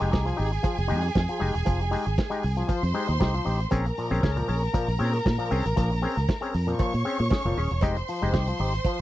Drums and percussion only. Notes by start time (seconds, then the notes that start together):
0.01 closed hi-hat
0.13 kick, snare, cowbell
0.27 closed hi-hat
0.38 open hi-hat
0.53 closed hi-hat
0.64 kick, closed hi-hat, cowbell
0.78 closed hi-hat
0.89 open hi-hat
1.03 snare, closed hi-hat
1.15 kick, snare, cowbell
1.29 closed hi-hat
1.41 open hi-hat
1.55 closed hi-hat
1.66 kick, closed hi-hat, cowbell
1.81 closed hi-hat
1.93 open hi-hat
2.06 closed hi-hat
2.18 kick, snare, cowbell
2.32 closed hi-hat
2.43 open hi-hat
2.57 closed hi-hat
2.69 kick, closed hi-hat, cowbell
2.83 closed hi-hat
2.95 open hi-hat
3.08 snare, closed hi-hat
3.20 kick, snare, cowbell
3.34 closed hi-hat
3.47 open hi-hat
3.60 closed hi-hat
3.71 kick, closed hi-hat, cowbell
3.86 closed hi-hat
3.98 open hi-hat
4.12 closed hi-hat
4.23 kick, snare, cowbell
4.37 closed hi-hat
4.49 open hi-hat
4.63 closed hi-hat
4.74 kick, closed hi-hat, cowbell
4.89 closed hi-hat
5.00 open hi-hat
5.13 snare, closed hi-hat
5.26 kick, snare, cowbell
5.39 closed hi-hat
5.51 open hi-hat
5.66 closed hi-hat
5.77 kick, closed hi-hat, cowbell
5.91 closed hi-hat
6.03 open hi-hat
6.18 closed hi-hat
6.29 kick, snare, cowbell
6.42 closed hi-hat
6.54 open hi-hat
6.69 closed hi-hat
6.79 kick, closed hi-hat, cowbell
6.94 closed hi-hat
7.05 open hi-hat
7.19 closed hi-hat
7.30 kick, snare, cowbell
7.45 closed hi-hat
7.57 open hi-hat
7.71 closed hi-hat
7.81 kick, closed hi-hat, cowbell
7.96 closed hi-hat
8.08 open hi-hat
8.22 closed hi-hat
8.34 kick, snare, cowbell
8.47 closed hi-hat
8.59 open hi-hat
8.73 closed hi-hat
8.85 kick, closed hi-hat, cowbell